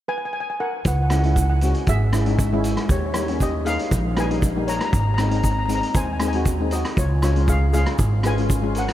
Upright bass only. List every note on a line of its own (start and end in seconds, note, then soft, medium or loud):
0.85 1.72 C#2 medium
1.87 2.74 G#1 medium
2.89 3.76 D#2 medium
3.91 4.78 A#1 medium
4.93 5.80 G#1 medium
5.95 6.81 D#2 medium
6.97 7.83 C#2 loud
7.99 8.85 G#1 medium